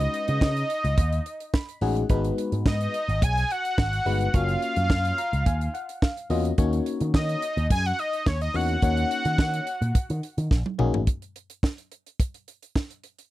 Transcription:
Already playing: G#3 C#4 D#4 F#4 B4 D#5
0.00 closed hi-hat
0.14 closed hi-hat
0.28 C#3, closed hi-hat
0.41 C#3, kick, snare
0.57 closed hi-hat
0.70 closed hi-hat
0.84 C#2, closed hi-hat
0.98 D#2, kick, closed hi-hat
1.13 closed hi-hat
1.26 closed hi-hat
1.40 closed hi-hat
1.54 B5, kick, snare
1.69 closed hi-hat
1.81 A1 G#3 C#4 D#4 F#4 G#4 F#5, open hi-hat
1.97 closed hi-hat
2.09 G#1 G#3 B3 D#4 F#4 B4, kick, closed hi-hat
2.24 closed hi-hat
2.38 closed hi-hat
2.52 G#2, closed hi-hat
2.66 G#2 D#5, kick, snare
2.81 closed hi-hat
2.94 closed hi-hat
3.09 G#1, closed hi-hat
3.22 B1 G#5, kick, closed hi-hat
3.37 closed hi-hat
3.50 F#5, closed hi-hat
3.65 closed hi-hat
3.78 G#1, kick, snare
3.93 closed hi-hat
4.06 G1 G#3 B3 D#4 F#4 B4, open hi-hat
4.21 closed hi-hat
4.34 F#1 A#3 C#4 F4 F#4 C#5 F5, kick, closed hi-hat
4.49 closed hi-hat
4.62 closed hi-hat
4.76 F#2, closed hi-hat
4.90 kick, snare
5.05 closed hi-hat
5.18 A#5, closed hi-hat
5.33 C#2, closed hi-hat
5.46 D#2 G#5, kick, closed hi-hat
5.61 closed hi-hat
5.74 F#5, closed hi-hat
5.89 closed hi-hat
6.02 F5, kick, snare
6.17 closed hi-hat
6.30 E2 A#3 C#4 F4 F#4 D#5, open hi-hat
6.45 closed hi-hat
6.58 D#2 A#3 C#4 D#4 F#4 C#5, kick, closed hi-hat
6.73 closed hi-hat
6.86 closed hi-hat
7.01 D#3, closed hi-hat
7.14 D#3 D#5, kick, snare
7.29 closed hi-hat
7.42 closed hi-hat
7.57 D#2, closed hi-hat
7.70 F#2 G#5, kick, closed hi-hat
7.85 F#5, closed hi-hat
7.99 D#5, closed hi-hat
8.13 closed hi-hat
8.26 D#2 C#5, kick, snare
8.41 D#5, closed hi-hat
8.54 E2 A#3 C#4 D#4 F#4 C#5 F#5, open hi-hat
8.69 closed hi-hat
8.82 D#2 A#3 C#4 D#4 F#4 C#5, kick, closed hi-hat
8.97 closed hi-hat
9.11 closed hi-hat
9.25 D#3, closed hi-hat
9.38 D#3, kick, snare
9.54 closed hi-hat
9.67 closed hi-hat
9.82 A#2, closed hi-hat
9.95 kick, closed hi-hat
10.10 D#3, closed hi-hat
10.23 closed hi-hat
10.38 D#3, closed hi-hat
10.51 A#1, kick, snare
10.66 high tom
10.78 A#1 A#3 C#4 D#4 F#4 G#4, mid tom
10.94 A1, floor tom
11.07 kick, closed hi-hat
11.22 closed hi-hat
11.36 closed hi-hat
11.50 closed hi-hat
11.63 kick, snare
11.78 closed hi-hat
11.92 closed hi-hat
12.06 closed hi-hat
12.20 kick, closed hi-hat
12.34 closed hi-hat
12.48 closed hi-hat
12.62 closed hi-hat
12.76 kick, snare
12.90 closed hi-hat
13.04 closed hi-hat
13.19 closed hi-hat

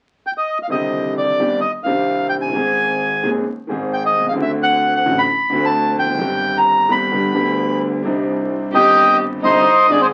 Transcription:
0.27 G5
0.38 D#5
0.63 F5
0.68 C2 C3 D3 D#3 C4 D#5
0.73 G4
1.18 D5
1.39 G1 G2 D#3 C4 D4 G4
1.61 D#5
1.84 C2 C3 D#3 C4 D4 F5
1.88 G4
2.29 F#1 G5
2.38 F1 G#5
2.43 F#1
2.48 G1
2.52 G#1 G#2 D#3 G#3 C4
2.56 G#4
3.23 D#1 D#2 D#3 G#3 C4 G#4
3.67 G#1 G#2 D#3 G#3 C4
3.71 G#4
3.94 G5
4.06 D#5
4.15 C2
4.20 B1
4.27 C2 C#2 F5
4.34 D2 D3 A3 C4
4.38 F#4 E5
4.63 F#5
4.96 F#5
5.05 A1 A2 D3 A3 C4 F#4
5.18 B5
5.50 D2 D3 A3 C4 F#4
5.65 A5
5.97 F1 G5
6.03 E2
6.09 F2
6.14 F#2 D#3
6.19 G1 G2 G3 C4 G4
6.57 A#5
6.88 G1 G2 D#3 G3 C4 G4 B5
7.12 G1 G2 D3 G3 B3 G4
7.34 D2 D3 G3 B3 G4
8.03 C2 C3 G3 C4 D4
8.07 D#4
8.73 G1 G2 D#3 G3 C4 D#4 G4 D#5 G5
9.42 C2 C3 D3 G3 C4 D#4 C5 D#5
9.88 G#1 G#2 D#3 G#3 C4 D4 G#4 D5
9.92 G#4
10.01 C4 G#4 C5

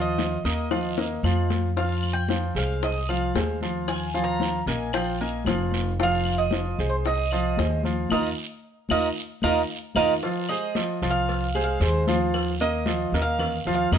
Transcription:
Already playing: D#2 F3 F4 F5
0.01 D#5
0.18 high bongo, high conga, short guiro
0.44 D#2 A#3 A#4 D#5, high conga, short guiro
0.71 F3 F4 F5, high bongo, high conga, long guiro, claves
0.97 A#3 A#4 D#5, high bongo, high conga
1.23 F2 F3 F4 F5, high conga, short guiro, claves
1.50 low bongo, high conga, short guiro
1.76 F3 F4 F5, high bongo, long guiro
2.03 high conga, claves
2.13 G5
2.29 F3 F4 F5, high bongo, high conga, short guiro
2.55 C2 G#3 G#4 C5 F5, high conga, short guiro
2.82 D#5, high bongo, high conga, long guiro
3.09 F3 F4 F5, high conga, claves
3.35 D#2 G#3 G#4 C5, high bongo, low bongo, high conga, short guiro
3.61 F3 F4 F5, high conga, short guiro
3.87 G#5, high bongo, high conga, long guiro, claves
4.14 F3 F4 F5, high bongo, high conga
4.24 A#5
4.40 high bongo, high conga, short guiro
4.66 A#1 A#3 A#4 D#5 G#5, high conga, short guiro
4.93 F3 F4 F5 G5, high bongo, high conga, long guiro, claves
5.19 A#3 A#4 D#5 G#5, high bongo, high conga
5.45 F1 F3 F4 F5, high bongo, low bongo, high conga, short guiro, claves
5.72 high bongo, high conga, short guiro
5.99 F3 F4 F5, high bongo, high conga, long guiro
6.03 F5
6.25 high conga, claves
6.38 D#5
6.51 F3 F4 F5, high bongo, high conga, short guiro
6.78 C2 G#3 G#4 C5, high conga, short guiro
6.90 C5
7.04 D#5, high bongo, high conga, long guiro
7.31 F3 F4 D#5 F5, high conga, claves
7.57 D#2 G#3 G#4 C5, high bongo, low bongo, high conga, short guiro
7.83 F3 F4 F5, high conga, short guiro
8.09 D#2 D#4 F4 A#4 D#5 F5 A#5, low bongo, high conga, long guiro, claves
8.89 D#2 D#4 F4 A#4 D#5 F5 A#5, low bongo, high conga, long guiro, claves
9.42 D#2 D#4 F4 A#4 D#5 F5 A#5, low bongo, high conga, long guiro, claves
9.95 D#2 D#4 F4 A#4 D#5 F5 A#5, low bongo, high conga, long guiro, claves
10.22 F3 F4 F5, cowbell, high conga, long guiro
10.49 G#3 G#4 C5 D#5, high conga, claves
10.75 F3 F4 F5, cowbell, high conga, short guiro
11.02 C2 F3 F4 F5, high conga, short guiro
11.10 F5
11.29 cowbell, high conga, long guiro
11.55 G#3 G#4 C5, high conga, claves
11.64 F5
11.80 D#2 G#3 G#4 C5, cowbell, high conga, short guiro
12.07 F3 F4 F5, high conga, short guiro
12.34 cowbell, high conga, long guiro, claves
12.59 A#3 A#4 D#5, high conga
12.86 F3 F4 F5, cowbell, high conga, short guiro
13.12 D#2 A#3 A#4 D#5, cowbell, high conga, short guiro
13.22 F5
13.39 cowbell, high conga, low conga, long guiro, claves
13.65 D#2 F3 F4 F5, high conga
13.75 F5
13.92 F2 A#3 A#4 D#5, cowbell, high conga, short guiro, claves

